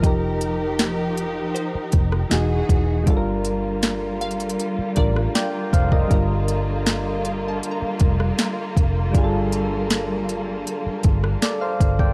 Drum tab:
HH |x---x---x---x---x---x---x---x---|x---x---x---xxxxx---x---x---x---|x---x---x---x---x---x---x---x---|x---x---x---x---x---x---x---x---|
SD |--------o-------------r-o-------|--------o-------------r-o-------|--------o-------------r-o-------|--------o-------------r-o-------|
BD |o-------------------o-------o---|o-------------------o-------o-o-|o-------------------o-------o---|o-------------------o-------o-o-|